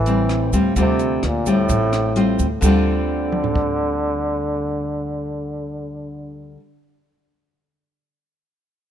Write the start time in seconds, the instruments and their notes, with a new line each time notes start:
Already playing: upright bass A1, nylon-string guitar A2, trombone E3
0.06 nylon-string guitar G3 C4, closed hi-hat, shaker
0.29 cross-stick, closed hi-hat
0.53 upright bass D2, nylon-string guitar G3 C4 F4, kick, closed hi-hat, shaker
0.76 upright bass D2, trombone C3, nylon-string guitar D3 G3 C4 F4, kick, closed hi-hat, shaker
0.99 closed hi-hat, shaker
1.23 upright bass D2, trombone A#2, cross-stick, closed hi-hat
1.46 trombone A2, nylon-string guitar G3 C4 F4, kick, closed hi-hat, shaker
1.69 upright bass A1, nylon-string guitar A2, kick, closed hi-hat, shaker
1.93 cross-stick, closed hi-hat, shaker
2.16 nylon-string guitar G3 C4 F4, closed hi-hat
2.39 upright bass D2, kick, closed hi-hat, shaker
2.61 upright bass D2, nylon-string guitar D3 G3, trombone D3, kick, crash, shaker
2.65 nylon-string guitar C4 F4
3.32 mid tom
3.44 floor tom
3.56 kick